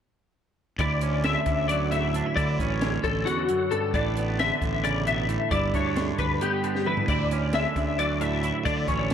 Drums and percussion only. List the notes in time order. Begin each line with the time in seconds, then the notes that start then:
0.79 kick, closed hi-hat
1.01 closed hi-hat
1.24 snare, closed hi-hat
1.46 kick, closed hi-hat
1.69 closed hi-hat
1.92 snare, closed hi-hat
2.14 closed hi-hat
2.37 kick, closed hi-hat
2.59 kick, closed hi-hat
2.81 snare, closed hi-hat
3.04 kick, closed hi-hat
3.27 snare, closed hi-hat
3.49 closed hi-hat
3.71 closed hi-hat
3.94 kick, closed hi-hat
4.17 closed hi-hat
4.39 snare, closed hi-hat
4.62 kick, closed hi-hat
4.85 closed hi-hat
5.07 closed hi-hat
5.29 closed hi-hat
5.51 kick, closed hi-hat
5.74 kick, closed hi-hat
5.96 snare, closed hi-hat
6.19 kick, closed hi-hat
6.41 closed hi-hat
6.64 closed hi-hat
6.75 snare
6.87 mid tom
6.97 floor tom
7.08 kick, closed hi-hat, splash
7.31 closed hi-hat
7.53 snare, closed hi-hat
7.76 kick, snare, closed hi-hat
7.99 closed hi-hat
8.21 closed hi-hat
8.43 closed hi-hat
8.66 kick, closed hi-hat
8.88 kick, closed hi-hat
9.10 closed hi-hat